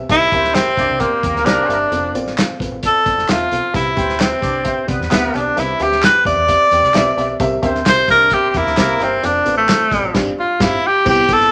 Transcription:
0.09 C2 C3 C4 E4 G4 A#4 E5, kick, closed hi-hat, tambourine
0.31 D2 C4 G4 A#4 C5 E5, kick, closed hi-hat, tambourine
0.44 snare
0.54 C4 G4 A#4 E5, snare, clap, closed hi-hat, tambourine
0.77 C2 C4 D4 G4 A#4 D5 E5, kick, closed hi-hat, tambourine
0.89 C2
1.00 A#3 C4 G4 A#4 C5 D5, kick, closed hi-hat, tambourine
1.23 E2 A#3 C4 G4 A#4 G5, kick, closed hi-hat, tambourine
1.34 D2, snare
1.45 C2 A#3 C4 D4 G4 A#4 C5, snare, clap, closed hi-hat, tambourine
1.68 G1 C4 G4 A#4 E5, closed hi-hat, tambourine
1.91 F1 C4 F4 A4 D5, closed hi-hat, tambourine
2.14 A1 C4 F4 A4 D5, closed hi-hat, tambourine
2.27 snare
2.37 C4 F4 A4 F5, snare, clap, closed hi-hat, tambourine
2.59 A1 C4 F4 A4 B4, kick, closed hi-hat, tambourine
2.71 A1
2.83 C4 F4 A4 D5, kick, closed hi-hat, tambourine
3.05 G1 C4 F4 A4 D5, kick, closed hi-hat, tambourine
3.17 F1, snare
3.28 E1 C4 F4 A4 E5, snare, clap, closed hi-hat, tambourine
3.51 B1 C4 F4 A4 F5, closed hi-hat, tambourine
3.73 C2 C3 C4 E4 G4 B4 E5, kick, closed hi-hat, tambourine
3.96 D2 C4 G4 B4 C5 G5, kick, closed hi-hat, tambourine
4.09 snare
4.18 C4 G4 B4 E5, snare, clap, closed hi-hat, tambourine
4.40 C2 C4 D4 G4 B4 D5 G5, kick, closed hi-hat, tambourine
4.64 C4 G4 B4 C5 E5, kick, closed hi-hat, tambourine
4.86 C2 B3 C4 G4 B4 D5, kick, closed hi-hat, tambourine
5.00 E2, snare
5.10 D2 B3 C4 G4 B4 E5, snare, clap, closed hi-hat, tambourine
5.34 B1 C4 D4 G4 B4 D5, closed hi-hat, tambourine
5.56 C2 C3 C4 E4 G4 B4 E5, closed hi-hat, tambourine
5.79 D2 C4 G4 B4 E5, closed hi-hat, tambourine
5.92 snare
6.02 C4 G4 B4 G5, snare, clap, closed hi-hat, tambourine
6.24 E2 C4 G4 B4 D5 E5, kick, closed hi-hat, tambourine
6.36 E2
6.47 C4 G4 B4 E5, kick, closed hi-hat, tambourine
6.71 E2 C4 G4 B4 G5, closed hi-hat, tambourine
6.83 C2, snare
6.94 B1 C4 G4 B4 E5, snare, clap, closed hi-hat, tambourine
7.17 B1 C4 G4 B4 E5, closed hi-hat, tambourine
7.40 C2 C3 C4 G4 A#4 E5, kick, closed hi-hat, tambourine
7.62 D2 C4 G4 A#4 C5 E5, kick, closed hi-hat, tambourine
7.75 snare
7.85 C2 C4 G4 A#4 C5 E5, snare, clap, closed hi-hat, tambourine
8.08 C2 C4 D4 G4 A#4 D5 E5, kick, closed hi-hat, tambourine
8.30 C4 G4 A#4 C5 E5, kick, closed hi-hat
8.50 G4
8.54 E2 A#3 C4 E4 G4 A#4 E5, kick, closed hi-hat, tambourine
8.66 D2, snare
8.77 C2 A#3 C4 G4 A#4 C5, snare, clap, closed hi-hat, tambourine
9.00 G1 C4 G4 A#4 E5, closed hi-hat, tambourine
9.22 F1 C4 D4 F4 A4 D5, closed hi-hat, tambourine
9.45 A1 C4 F4 A4 B4, closed hi-hat, tambourine
9.57 A3
9.68 C4 F4 A4 C5, snare, clap, closed hi-hat, tambourine
9.91 A1 C4 F4 A4 D5, kick, closed hi-hat, tambourine
10.03 A1
10.13 G1 G2 C4 F4 G4 D5, kick, snare, crash
10.39 F4
10.59 G1 C4 E4 F4 G4 F5, kick, snare, crash
10.87 G4
11.05 C2 C3 B3 C4 E4 G4 C5, kick, crash, tambourine
11.10 G4
11.28 G1 B3 C4 E4 G4 A4, kick, closed hi-hat, tambourine
11.33 A4
11.40 snare

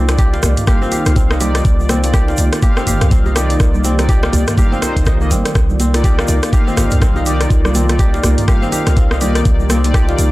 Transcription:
Already playing: C2 D#3 A#3 C4 D#4 F4 G4 D5
0.09 A#3 D#4 F4 D5, cross-stick, closed hi-hat, djembe slap, high conga, shaker
0.18 G4, kick, closed hi-hat, djembe tone, shaker
0.33 F4, djembe slap, shaker
0.43 C2, cross-stick, open hi-hat, high conga, djembe tone, djembe bass, shaker
0.57 A#3 D#4 F4 D5, closed hi-hat, mid tom, shaker
0.67 A#3 D#4 F4 G4 F5, kick, cross-stick, closed hi-hat, djembe tone, high conga, low conga, shaker
0.82 C4, shaker
0.92 G4, open hi-hat, djembe tone, shaker
1.06 C2, cross-stick, closed hi-hat, shaker
1.16 C4, kick, closed hi-hat, djembe tone, shaker
1.31 D#4, cross-stick, shaker
1.40 A#3 D#4 F4 G4 D5, open hi-hat, high conga, djembe tone, low conga, shaker
1.55 cross-stick, closed hi-hat, shaker
1.65 C2 G4, kick, closed hi-hat, djembe tone, shaker
1.79 low conga, shaker
1.89 C4, cross-stick, open hi-hat, djembe tone, high conga, shaker
2.04 A#3 D#4 F4 D5, closed hi-hat, djembe slap, shaker
2.14 G4, kick, cross-stick, closed hi-hat, djembe tone, shaker
2.28 F4, djembe slap, shaker
2.37 C2, open hi-hat, high conga, djembe tone, shaker
2.53 A#3 D#4 F4 D5, cross-stick, closed hi-hat, shaker
2.62 A#3 D#4 F4 G4 F5, kick, closed hi-hat, high conga, djembe tone, shaker
2.77 C4, cross-stick, shaker
2.87 G1 G4, mid tom, open hi-hat, djembe tone, high conga, shaker
3.01 C2, cross-stick, closed hi-hat, mid tom, shaker
3.11 C4, kick, closed hi-hat, djembe tone, low conga, shaker
3.26 D#4, high conga, djembe bass, shaker
3.36 A#3 D#4 F4 G4 D5, cross-stick, open hi-hat, djembe tone, shaker
3.50 closed hi-hat, shaker
3.60 C2, kick, cross-stick, closed hi-hat, djembe tone, shaker
3.74 low conga, shaker
3.84 C4, open hi-hat, djembe tone, high conga, shaker
3.99 A#3 D#4 F4 D5, cross-stick, closed hi-hat, djembe slap, high conga, shaker
4.09 G4, kick, closed hi-hat, djembe tone, shaker
4.23 F4, cross-stick, djembe slap, shaker
4.33 C2, open hi-hat, djembe tone, high conga, djembe bass, shaker
4.48 A#3 D#4 F4 D5, cross-stick, closed hi-hat, mid tom, shaker
4.57 A#3 D#4 F4 G4 F5, kick, closed hi-hat, djembe tone, high conga, low conga, shaker
4.72 C4, shaker
4.82 A#3 D#4 F4 C5, cross-stick, open hi-hat, djembe tone, shaker
4.96 C2, kick, closed hi-hat, shaker
5.05 D#4, kick, cross-stick, closed hi-hat, djembe tone, shaker
5.21 A#3 D#4 F4 D#5, shaker
5.30 G1 C4, open hi-hat, djembe tone, high conga, low conga, shaker
5.45 cross-stick, closed hi-hat, shaker
5.55 C2 F4, kick, cross-stick, closed hi-hat, djembe tone, shaker
5.69 low conga, shaker
5.80 C4, open hi-hat, high conga, djembe tone, shaker
5.94 A#3 D#4 F4 D5, cross-stick, closed hi-hat, djembe slap, high conga, shaker
6.04 G4, kick, closed hi-hat, djembe tone, shaker
6.19 F4, cross-stick, djembe slap, shaker
6.28 C2, open hi-hat, djembe tone, high conga, shaker
6.43 A#3 D#4 F4 D5, cross-stick, closed hi-hat, shaker
6.53 A#3 D#4 F4 G4 F5, kick, closed hi-hat, high conga, djembe tone, shaker
6.67 C4, shaker
6.77 G1 G4, cross-stick, mid tom, open hi-hat, high conga, djembe tone, shaker
6.91 C2, closed hi-hat, mid tom, shaker
7.01 C4, kick, cross-stick, closed hi-hat, djembe tone, low conga, shaker
7.16 D#4, high conga, djembe bass, shaker
7.26 A#3 D#4 F4 G4 D5, open hi-hat, djembe tone, shaker
7.41 cross-stick, closed hi-hat, shaker
7.50 C2, kick, closed hi-hat, djembe tone, shaker
7.64 cross-stick, low conga, shaker
7.75 C4, open hi-hat, high conga, djembe tone, shaker
7.88 A#3 D#4 F4 D5, cross-stick, closed hi-hat, djembe slap, high conga, shaker
7.99 G4, kick, closed hi-hat, djembe tone, shaker
8.14 F4, djembe slap, shaker
8.23 C2, cross-stick, open hi-hat, high conga, djembe tone, djembe bass, shaker
8.38 A#3 D#4 F4 D5, closed hi-hat, mid tom, shaker
8.48 A#3 D#4 F4 G4 F5, kick, cross-stick, closed hi-hat, high conga, djembe tone, low conga, shaker
8.62 C4, shaker
8.72 G4, open hi-hat, djembe tone, shaker
8.87 C2, cross-stick, closed hi-hat, shaker
8.97 C4, kick, closed hi-hat, djembe tone, shaker
9.11 D#4, cross-stick, shaker
9.21 A#3 D#4 F4 G4 D5, open hi-hat, djembe tone, high conga, low conga, shaker
9.35 cross-stick, closed hi-hat, shaker
9.45 C2 G4, kick, closed hi-hat, djembe tone, shaker
9.60 low conga, shaker
9.70 C4, cross-stick, open hi-hat, high conga, djembe tone, shaker
9.84 A#3 D#4 F4 D5, closed hi-hat, djembe slap, high conga, shaker
9.94 G4, kick, cross-stick, closed hi-hat, djembe tone, shaker
10.08 F4, djembe slap, shaker
10.18 C2, open hi-hat, high conga, djembe tone, shaker

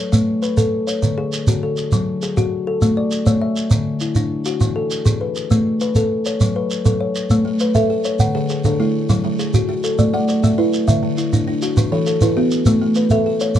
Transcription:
Already playing: A4 C#5
0.12 A3, shekere
0.42 B4, shekere
0.57 A4, shekere
0.87 C#5, shekere
1.02 D3, shekere
1.18 G#4
1.33 shekere
1.47 D3 F#4, shekere
1.63 A4
1.77 shekere
1.92 F#3, shekere
2.22 G#4, shekere
2.37 F#4, shekere
2.67 A4
2.82 A3, shekere
2.97 D5
3.11 shekere
3.26 A3 C#5, shekere
3.42 E5
3.56 shekere
3.71 D3, shekere
4.00 E4, shekere
4.15 D4, shekere
4.45 F#4, shekere
4.61 E3, shekere
4.76 A4
4.91 shekere
5.05 E3 G#4, shekere
5.21 B4
5.36 shekere
5.51 A3, shekere
5.81 B4, shekere
5.95 A4, shekere
6.26 C#5, shekere
6.41 F#3, shekere
6.56 B4
6.71 shekere
6.85 F#3 A4, shekere
7.01 C#5
7.16 shekere
7.30 A3, shekere
7.45 A3
7.60 B4, shekere
7.75 A4 E5, shekere
7.90 A4
8.04 C#5, shekere
8.19 D3 F#5, shekere
8.35 D3 G#4 B4
8.49 G#4, shekere
8.64 D3 D4 A4, shekere
8.80 A3 E4
9.09 F#3 A4, shekere
9.24 F#3
9.39 G#4, shekere
9.54 F#4, shekere
9.69 F#4
9.84 A4, shekere
9.99 A3 D5, shekere
10.14 A3 D5 F#5
10.29 D5, shekere
10.43 A3 A4 E5, shekere
10.58 E4 B4
10.73 shekere
10.88 D3 E5, shekere
11.03 D3
11.18 E4, shekere
11.33 D4, shekere
11.47 D4
11.62 F#4, shekere
11.77 E3 B4, shekere
11.92 E3 A4 C#5
12.06 A4, shekere
12.21 E3 E4 B4, shekere
12.37 B3 F#4
12.51 shekere
12.66 A3 B4, shekere
12.81 A3
12.95 B4, shekere
13.10 A4 E5, shekere
13.26 A4
13.40 C#5, shekere
13.55 F#3, shekere

